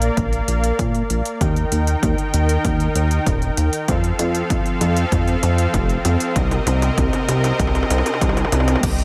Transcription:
0.00 0.10 A#1 medium
0.00 1.38 A#3 medium
0.00 1.38 A#4 medium
0.00 1.38 D5 medium
0.00 1.38 F5 medium
0.00 closed hi-hat medium
0.17 0.41 A#1 loud
0.17 kick medium
0.17 closed hi-hat medium
0.17 mid tom medium
0.33 closed hi-hat soft
0.48 0.72 A#1 loud
0.48 closed hi-hat medium
0.64 closed hi-hat medium
0.79 1.03 A#2 loud
0.79 kick medium
0.79 closed hi-hat medium
0.79 mid tom medium
0.95 closed hi-hat soft
1.10 1.22 A#1 medium
1.10 closed hi-hat medium
1.25 closed hi-hat soft
1.41 1.65 D#2 loud
1.41 3.86 D#3 medium
1.41 3.86 D#4 medium
1.41 3.86 A#4 medium
1.41 3.86 G5 medium
1.41 kick medium
1.41 closed hi-hat medium
1.41 mid tom medium
1.56 closed hi-hat soft
1.72 1.96 D#2 medium
1.72 closed hi-hat medium
1.87 closed hi-hat medium
2.03 2.15 D#2 medium
2.03 kick loud
2.03 closed hi-hat medium
2.03 mid tom medium
2.18 closed hi-hat soft
2.34 2.57 D#2 medium
2.34 closed hi-hat medium
2.49 closed hi-hat medium
2.65 2.88 D#2 medium
2.65 kick medium
2.65 closed hi-hat medium
2.65 mid tom medium
2.80 closed hi-hat soft
2.95 3.19 D#2 loud
2.95 closed hi-hat medium
3.11 closed hi-hat medium
3.26 3.50 D#1 loud
3.26 kick medium
3.26 closed hi-hat medium
3.26 mid tom medium
3.42 closed hi-hat soft
3.57 3.69 D#2 medium
3.57 closed hi-hat loud
3.73 closed hi-hat medium
3.88 4.12 F2 loud
3.88 6.33 F3 medium
3.88 8.79 C4 medium
3.88 6.33 A4 medium
3.88 6.33 F5 medium
3.88 kick medium
3.88 closed hi-hat medium
3.88 mid tom medium
4.04 closed hi-hat soft
4.19 4.43 F2 medium
4.19 closed hi-hat medium
4.19 mid tom medium
4.35 closed hi-hat soft
4.50 4.62 F2 medium
4.50 kick loud
4.50 closed hi-hat medium
4.50 mid tom medium
4.66 closed hi-hat soft
4.81 5.05 F2 medium
4.81 closed hi-hat medium
4.81 mid tom medium
4.97 closed hi-hat medium
5.12 5.36 F2 loud
5.12 kick loud
5.12 closed hi-hat medium
5.12 mid tom medium
5.28 closed hi-hat soft
5.43 5.67 F2 loud
5.43 closed hi-hat medium
5.43 mid tom medium
5.58 closed hi-hat soft
5.74 5.98 F1 loud
5.74 kick medium
5.74 closed hi-hat medium
5.74 mid tom medium
5.89 closed hi-hat soft
6.05 6.17 F2 medium
6.05 closed hi-hat medium
6.05 mid tom medium
6.20 closed hi-hat medium
6.36 6.60 C2 loud
6.36 8.81 C3 medium
6.36 8.81 A#4 medium
6.36 8.81 D#5 medium
6.36 kick loud
6.36 closed hi-hat medium
6.36 mid tom medium
6.51 closed hi-hat soft
6.51 mid tom medium
6.67 6.90 C2 medium
6.67 closed hi-hat medium
6.67 mid tom medium
6.82 closed hi-hat soft
6.82 mid tom medium
6.98 7.10 C2 medium
6.98 kick loud
6.98 closed hi-hat medium
6.98 mid tom medium
7.13 closed hi-hat soft
7.13 mid tom medium
7.29 7.52 C2 medium
7.29 closed hi-hat medium
7.29 mid tom loud
7.44 closed hi-hat medium
7.44 mid tom medium
7.59 7.83 C2 medium
7.59 kick loud
7.59 closed hi-hat medium
7.59 mid tom loud
7.67 mid tom medium
7.75 closed hi-hat soft
7.75 mid tom medium
7.83 mid tom medium
7.90 8.02 C2 loud
7.90 closed hi-hat medium
7.90 mid tom loud
7.98 mid tom medium
8.06 closed hi-hat medium
8.06 mid tom medium
8.14 mid tom medium
8.21 8.45 C2 medium
8.21 kick loud
8.21 closed hi-hat medium
8.21 mid tom loud
8.29 mid tom loud
8.37 closed hi-hat soft
8.37 mid tom medium
8.45 mid tom medium
8.52 8.76 C2 loud
8.52 closed hi-hat medium
8.52 mid tom loud
8.60 mid tom medium
8.68 closed hi-hat soft
8.68 mid tom loud
8.76 mid tom loud
8.83 9.04 C2 loud
8.83 9.04 C3 medium
8.83 9.04 C4 medium
8.83 9.04 G4 medium
8.83 9.04 D#5 medium
8.83 kick loud
8.83 closed hi-hat medium
8.83 crash loud
8.99 closed hi-hat soft

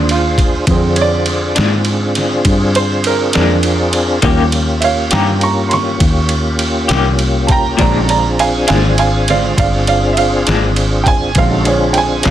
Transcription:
0.00 0.66 D#2 medium
0.00 0.66 D4 medium
0.00 0.66 F4 medium
0.00 0.65 G#4 medium
0.00 0.66 C5 medium
0.09 0.68 F4 medium
0.09 ride medium
0.38 kick medium
0.38 ride medium
0.67 1.54 F2 medium
0.67 4.21 D3 soft
0.67 4.20 C4 medium
0.67 4.21 C4 medium
0.67 4.20 D4 medium
0.67 4.21 F4 medium
0.67 4.20 G#4 medium
0.67 4.21 G#4 soft
0.67 kick loud
0.67 ride medium
0.96 1.00 C#5 medium
0.96 ride medium
1.01 2.74 D5 medium
1.26 ride medium
1.55 2.44 G#2 medium
1.55 1.75 A#2 medium
1.55 1.75 F3 medium
1.55 1.75 G#3 medium
1.55 1.74 D4 medium
1.55 snare loud
1.55 ride medium
1.85 ride medium
2.15 snare soft
2.15 ride medium
2.45 3.32 G2 medium
2.45 kick medium
2.45 ride medium
2.75 3.05 C5 medium
2.75 ride medium
3.04 3.34 A#4 medium
3.04 ride medium
3.33 4.22 F2 medium
3.33 3.54 A#2 medium
3.33 3.53 F3 medium
3.33 3.53 G#3 medium
3.33 3.53 D4 medium
3.33 4.20 D4 medium
3.33 4.51 A#4 medium
3.33 snare medium
3.33 ride medium
3.63 ride medium
3.93 ride medium
4.22 5.10 D#2 medium
4.22 4.41 D#3 medium
4.22 4.63 F3 soft
4.22 4.64 G3 soft
4.22 4.42 A#3 medium
4.22 7.76 A#3 medium
4.22 7.76 C#4 medium
4.22 4.42 C#4 medium
4.22 4.64 C#4 medium
4.22 7.76 F4 medium
4.22 7.76 G4 medium
4.22 4.43 G4 medium
4.22 kick loud
4.22 ride medium
4.52 ride medium
4.80 5.11 C#5 medium
4.80 4.84 E5 medium
4.80 5.13 F5 medium
4.80 ride medium
5.11 5.99 G2 medium
5.11 5.31 D#3 medium
5.11 5.31 A#3 medium
5.11 5.31 C#4 medium
5.11 5.30 G4 medium
5.11 5.41 G5 medium
5.11 5.41 A#5 medium
5.11 snare loud
5.11 ride medium
5.41 5.71 A#5 medium
5.41 5.72 C#6 medium
5.41 ride medium
5.69 5.72 C6 medium
5.69 ride medium
5.73 6.88 C#6 medium
5.73 snare soft
6.00 6.88 D#2 medium
6.00 kick medium
6.00 ride medium
6.29 ride medium
6.59 ride medium
6.88 7.77 C2 medium
6.88 7.09 D#3 medium
6.88 7.09 A#3 medium
6.88 7.08 C#4 medium
6.88 7.08 G4 medium
6.88 snare loud
6.88 ride medium
7.19 ride medium
7.47 7.51 A5 medium
7.47 kick medium
7.47 ride medium
7.51 7.79 G5 medium
7.51 7.79 A#5 medium
7.77 8.66 A#1 medium
7.77 7.96 A#2 medium
7.77 8.19 D3 soft
7.77 7.97 F3 medium
7.77 7.97 G#3 medium
7.77 8.19 G#3 soft
7.77 8.09 C#4 medium
7.77 7.97 D4 medium
7.77 8.10 D#4 medium
7.77 8.10 F#4 medium
7.77 8.10 A4 medium
7.77 8.07 D5 medium
7.77 8.09 A#5 medium
7.77 kick loud
7.77 ride medium
7.81 8.20 C4 medium
8.07 11.32 C4 medium
8.07 11.32 D4 medium
8.07 11.32 F4 medium
8.07 11.32 G#4 medium
8.07 8.37 D5 medium
8.07 8.39 A#5 medium
8.07 ride medium
8.39 8.66 F5 medium
8.39 8.67 G#5 medium
8.39 ride medium
8.67 9.56 G#1 medium
8.67 8.87 A#2 medium
8.67 8.87 F3 medium
8.67 8.86 G#3 medium
8.67 8.86 D4 medium
8.67 8.96 F5 medium
8.67 8.98 G#5 medium
8.67 snare loud
8.67 ride loud
8.98 9.27 F5 medium
8.98 9.28 G#5 medium
8.98 ride medium
9.28 9.56 D3 soft
9.28 9.56 G#3 soft
9.28 9.56 C4 soft
9.28 9.57 D5 medium
9.28 9.58 F5 medium
9.28 snare soft
9.28 ride medium
9.58 10.45 G1 medium
9.58 9.86 D5 medium
9.58 9.87 F5 medium
9.58 kick medium
9.58 ride medium
9.87 10.15 D5 medium
9.87 10.16 F5 medium
9.87 ride medium
10.13 10.17 E5 medium
10.17 10.46 F5 medium
10.17 ride medium
10.47 11.34 G#1 medium
10.47 10.66 A#2 medium
10.47 10.66 F3 medium
10.47 10.65 G#3 medium
10.47 10.65 D4 medium
10.47 snare loud
10.47 ride medium
10.76 ride medium
11.04 11.07 G5 medium
11.04 kick medium
11.04 ride medium
11.08 11.36 G#5 medium
11.35 12.22 A#1 medium
11.35 12.30 D3 soft
11.35 12.30 G#3 soft
11.35 12.30 C4 medium
11.35 11.67 C#4 medium
11.35 11.66 F5 medium
11.35 kick loud
11.35 ride medium
11.39 11.68 D#4 medium
11.39 11.67 F#4 medium
11.39 11.67 A4 medium
11.65 12.30 C4 medium
11.65 12.30 D4 medium
11.65 12.30 F4 medium
11.65 12.30 G#4 medium
11.65 11.96 C#5 medium
11.65 ride medium
11.93 11.96 G5 medium
11.93 ride medium
11.98 12.26 G#5 medium
12.23 12.30 C2 medium
12.23 12.30 A#2 medium
12.23 12.30 F3 medium
12.23 12.30 G#3 medium
12.23 12.30 D4 medium
12.23 12.30 F5 medium
12.23 snare loud
12.23 ride medium

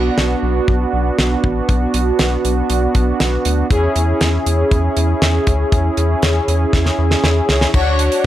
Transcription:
0.00 0.10 B1 loud
0.00 3.67 B3 medium
0.00 3.67 D4 medium
0.00 3.67 F#4 medium
0.18 0.35 B1 loud
0.18 snare loud
0.43 0.60 B1 loud
0.68 0.86 B1 loud
0.68 kick medium
0.93 1.11 B1 loud
1.18 1.36 B1 loud
1.18 snare loud
1.44 1.61 A1 medium
1.44 kick medium
1.69 1.87 B1 loud
1.69 kick loud
1.69 closed hi-hat medium
1.94 2.12 B1 loud
1.94 closed hi-hat medium
2.19 2.37 B1 loud
2.19 snare loud
2.19 closed hi-hat medium
2.45 2.62 B1 loud
2.45 closed hi-hat medium
2.70 2.87 B1 loud
2.70 closed hi-hat medium
2.95 3.13 B1 loud
2.95 kick medium
2.95 closed hi-hat medium
3.20 3.38 B1 loud
3.20 snare loud
3.20 closed hi-hat medium
3.45 3.63 D2 loud
3.45 closed hi-hat medium
3.70 3.88 E2 loud
3.70 7.70 C#4 medium
3.70 7.70 E4 medium
3.70 7.70 G#4 medium
3.70 kick loud
3.70 closed hi-hat medium
3.96 4.13 E2 loud
3.96 closed hi-hat medium
4.21 4.39 E2 loud
4.21 snare loud
4.21 closed hi-hat medium
4.46 4.64 E2 loud
4.46 closed hi-hat medium
4.71 4.89 E2 loud
4.71 kick medium
4.71 closed hi-hat medium
4.97 5.14 E2 loud
4.97 closed hi-hat medium
5.22 5.39 E2 loud
5.22 snare loud
5.22 closed hi-hat medium
5.47 5.65 D2 loud
5.47 kick medium
5.47 closed hi-hat medium
5.72 5.90 E2 loud
5.72 kick loud
5.72 closed hi-hat medium
5.97 6.15 E2 loud
5.97 closed hi-hat medium
6.22 6.40 E2 loud
6.22 snare loud
6.22 closed hi-hat medium
6.48 6.66 E2 loud
6.48 closed hi-hat medium
6.73 6.91 E2 loud
6.73 kick medium
6.73 snare medium
6.86 snare medium
6.98 7.16 E2 loud
7.11 snare medium
7.24 7.41 E2 loud
7.24 snare medium
7.49 7.66 C#2 loud
7.49 snare loud
7.61 snare medium
7.74 8.09 D2 loud
7.74 8.26 D4 medium
7.74 8.26 F#4 medium
7.74 8.26 C#5 medium
7.74 kick loud
7.74 crash medium
7.99 closed hi-hat medium
8.12 closed hi-hat medium

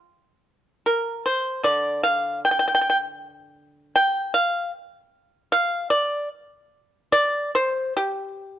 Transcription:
0.86 1.23 A#4 medium
1.26 1.62 C5 medium
1.63 3.95 D3 soft
1.63 2.00 D5 medium
2.03 2.40 F5 medium
2.45 2.50 G5 medium
2.51 2.58 G5 medium
2.59 2.66 G5 medium
2.68 2.73 G5 medium
2.75 2.80 G5 medium
2.81 2.88 G5 medium
2.90 2.96 G5 medium
3.96 4.32 G5 medium
4.34 4.71 F5 medium
5.52 5.89 F5 medium
5.90 6.28 D5 medium
7.12 7.50 D5 loud
7.55 7.93 C5 medium
7.97 8.59 G4 medium

